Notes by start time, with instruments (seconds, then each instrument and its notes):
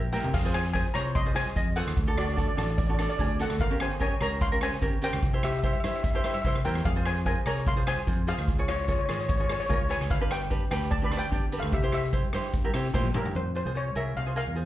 Already playing: fingered electric bass A#1
0.12 ukulele E4 G4 A#4, steel pan A#4 G5, snare
0.24 fingered electric bass C3, floor tom, shaker
0.34 fingered electric bass F2, steel pan G#4 F5, kick, crash, shaker
0.45 ukulele F4 G#4 C5
0.54 steel pan C5 G#5, cross-stick, closed hi-hat, shaker
0.65 closed hi-hat
0.73 ukulele F4 G#4 C5, steel pan C5 G#5, kick, closed hi-hat, shaker
0.94 fingered electric bass C2, ukulele F4 G#4 C5, steel pan C#5 A#5, cross-stick, closed hi-hat, shaker
1.06 closed hi-hat
1.15 steel pan D#5 C6, kick, closed hi-hat, shaker
1.26 ukulele F4 G#4 C5
1.34 ukulele F4 G#4 D#5, steel pan C5 G#5, cross-stick, closed hi-hat, shaker
1.47 closed hi-hat
1.55 fingered electric bass F2, ukulele F4 G#4 D#5, kick, closed hi-hat, shaker
1.76 ukulele F4 G#4 C5, steel pan A4 F#5, closed hi-hat, shaker
1.87 fingered electric bass D#2, cross-stick, closed hi-hat, shaker
1.97 fingered electric bass D2, kick, closed hi-hat, shaker
2.07 ukulele D4 F#4 A4
2.17 steel pan F#4 D5, cross-stick, closed hi-hat, shaker
2.25 steel pan D5, closed hi-hat
2.34 ukulele D4 F#4 A4, steel pan D5
2.38 kick, closed hi-hat, shaker
2.48 steel pan D5
2.56 fingered electric bass A1, ukulele D4 F#4 A4, steel pan D5, cross-stick, closed hi-hat, shaker
2.63 steel pan D5
2.69 steel pan D5, closed hi-hat
2.78 steel pan D5, kick, closed hi-hat, shaker
2.87 ukulele D4 F#4 A4, steel pan D5
2.94 steel pan D5
2.99 ukulele D4 F#4 A4, steel pan D5, cross-stick, closed hi-hat, shaker
3.09 steel pan D5, closed hi-hat
3.18 fingered electric bass D2, ukulele D4 F#4 G#4, steel pan D5, kick, closed hi-hat, shaker
3.25 steel pan D5
3.39 ukulele D4 F#4 A4, steel pan A4 F#5, closed hi-hat, shaker
3.50 fingered electric bass D2, cross-stick, closed hi-hat, shaker
3.60 fingered electric bass G1, steel pan A#4 F5, kick, closed hi-hat, shaker
3.70 ukulele C#4 G4 A#4
3.80 steel pan C5 G#5, cross-stick, closed hi-hat, shaker
3.91 closed hi-hat
3.99 ukulele C#4 G4 A#4, steel pan C#5 G#5, kick, closed hi-hat, shaker
4.21 fingered electric bass C#2, ukulele C#4 G4 A#4, steel pan C#5 A#5, cross-stick, closed hi-hat, shaker
4.32 closed hi-hat
4.41 steel pan F5 C6, kick, closed hi-hat, shaker
4.52 ukulele C#4 G4 A#4
4.61 ukulele C#4 G4 A#4, steel pan C5 G#5, cross-stick, closed hi-hat, shaker
4.72 closed hi-hat
4.81 fingered electric bass G1, ukulele C#4 G4 A#4, kick, closed hi-hat, shaker
5.02 ukulele C#4 G4 A#4, steel pan C5 G5, closed hi-hat, shaker
5.13 fingered electric bass C#2, cross-stick, closed hi-hat, shaker
5.23 fingered electric bass C2, kick, closed hi-hat, shaker
5.33 ukulele E4 G4 C5
5.43 steel pan G4 E5, cross-stick, closed hi-hat, shaker
5.52 steel pan E5, closed hi-hat, shaker
5.59 steel pan E5
5.63 ukulele E4 G4 C5, steel pan E5, kick, closed hi-hat, shaker
5.73 steel pan E5
5.80 ukulele G4, steel pan E5, cross-stick, closed hi-hat, shaker
5.84 fingered electric bass G2, ukulele E4 C5
5.88 steel pan E5
5.94 steel pan E5, closed hi-hat
6.03 steel pan E5, kick, closed hi-hat, shaker
6.11 ukulele G4, steel pan E5
6.15 ukulele E4 C5, steel pan E5, shaker
6.24 ukulele E4 G4 C5, steel pan E5, cross-stick, closed hi-hat, shaker
6.34 steel pan E5, closed hi-hat
6.42 fingered electric bass C2, ukulele E4 G4, steel pan E5, kick, closed hi-hat, shaker
6.46 ukulele C5, steel pan E5
6.55 cross-stick, shaker
6.64 fingered electric bass E2, ukulele E4 G4 C5, steel pan A#4 G5, closed hi-hat, shaker
6.75 cross-stick, closed hi-hat
6.85 fingered electric bass F2, steel pan G#4 F5, kick, closed hi-hat, shaker
6.96 ukulele F4 G#4 C5
7.06 steel pan C5 G#5, cross-stick, closed hi-hat, shaker
7.16 closed hi-hat
7.26 ukulele F4 G#4 A#4, steel pan C5 G#5, kick, closed hi-hat, shaker
7.46 fingered electric bass C2, ukulele F4 G#4 A#4, steel pan C#5 A#5, cross-stick, closed hi-hat, shaker
7.57 closed hi-hat
7.66 steel pan F5 C6, kick, closed hi-hat, shaker
7.76 ukulele F4 G#4 C5
7.87 ukulele F4 G#4 C5, steel pan C5 G#5, cross-stick, closed hi-hat, shaker
7.98 closed hi-hat
8.07 fingered electric bass F2, ukulele F4 G#4 C5, kick, closed hi-hat, shaker
8.27 ukulele F4 G#4 C5, steel pan G#4 F5, closed hi-hat, shaker
8.38 fingered electric bass D2, cross-stick, closed hi-hat, shaker
8.48 fingered electric bass C#2, kick, closed hi-hat, shaker
8.58 ukulele F4 G#4 C#5
8.68 steel pan F4 C#5, cross-stick, closed hi-hat, shaker
8.76 steel pan C#5, closed hi-hat
8.85 ukulele F4 G#4 C#5, steel pan C#5, kick, closed hi-hat, shaker
8.92 steel pan C#5
8.99 steel pan C#5
9.06 fingered electric bass G#1, ukulele F4 G#4 C#5, steel pan C#5, cross-stick, closed hi-hat, shaker
9.14 steel pan C#5
9.19 steel pan C#5, closed hi-hat
9.29 steel pan C#5, kick, closed hi-hat, shaker
9.37 ukulele F4 G#4 C#5, steel pan C#5
9.44 steel pan C#5
9.49 ukulele F4 G#4 C#5, steel pan C#5, cross-stick, closed hi-hat, shaker
9.60 steel pan C#5, closed hi-hat
9.66 fingered electric bass C#2, ukulele F4 G#4 A#4, steel pan C#5, kick, shaker
9.70 steel pan C#5, closed hi-hat
9.89 ukulele F4 G#4 C#5, steel pan B4 G#5, closed hi-hat, shaker
10.00 fingered electric bass C#2, cross-stick, closed hi-hat, shaker
10.09 fingered electric bass G1, steel pan B4 F5, kick, closed hi-hat, shaker
10.21 ukulele D4 G4 B4
10.30 steel pan B4 G5, cross-stick, closed hi-hat, shaker
10.41 closed hi-hat
10.50 ukulele D4 G4 B4, kick, closed hi-hat, shaker
10.71 fingered electric bass D2, ukulele D4 G4 B4, steel pan B4 G5, cross-stick, closed hi-hat, shaker
10.82 closed hi-hat
10.91 steel pan D5 A5, kick, closed hi-hat, shaker
11.02 ukulele D4 G4 B4, steel pan D5 B5
11.11 ukulele D4 G4 D5, cross-stick, closed hi-hat, shaker
11.17 steel pan B4 G5
11.22 closed hi-hat
11.31 fingered electric bass G1, ukulele D4 G4 D5, kick, closed hi-hat, shaker
11.52 ukulele D4 G4 B4, closed hi-hat, shaker
11.58 steel pan A4 F5, cross-stick, closed hi-hat
11.63 fingered electric bass D2, shaker
11.72 fingered electric bass C2, steel pan G4 E5, kick, closed hi-hat, shaker
11.82 ukulele E4 G4 C5
11.92 steel pan G4 E5, cross-stick, closed hi-hat, shaker
12.03 closed hi-hat, shaker
12.13 ukulele E4 G4 C5, kick, closed hi-hat, shaker
12.24 shaker
12.33 fingered electric bass G2, ukulele E4 G4 C5, cross-stick, closed hi-hat
12.44 closed hi-hat
12.53 kick, closed hi-hat, shaker
12.64 ukulele E4 G4 A#4, shaker
12.74 fingered electric bass C3, ukulele E4 G4 C5, cross-stick, closed hi-hat, shaker
12.85 closed hi-hat
12.93 fingered electric bass A#2, ukulele E4 G4 C5, kick, snare, shaker
13.05 high tom, shaker
13.14 fingered electric bass G2, ukulele E4 G4 A#4, steel pan A#4, mid tom, shaker
13.25 floor tom, shaker
13.35 fingered electric bass F2, steel pan C5, shaker
13.55 ukulele F4 G#4 C5, steel pan C5, shaker
13.66 fingered electric bass C2, ukulele F4 G#4 C5
13.74 ukulele F4 G#4 C5, steel pan C#5, shaker
13.95 fingered electric bass C2, ukulele F4 G#4 A#4, steel pan E5, shaker
14.16 fingered electric bass C2, steel pan F5, shaker
14.26 ukulele F4 G#4 C5
14.36 ukulele F4 G#4 A#4, steel pan F5, shaker
14.47 fingered electric bass E2
14.55 ukulele F4 G#4 C5, shaker